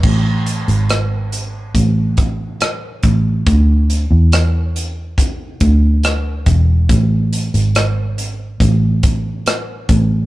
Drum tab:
CC |x---------------|----------------|----------------|
HH |--xxx-x-x-x-x-x-|x-x-x-x-x-x-x-x-|x-xxx-x-x-x-x-x-|
SD |----r-------r---|----r-------r---|----r-------r---|
BD |o-------o-o---o-|o-------o-o---o-|o-------o-o---o-|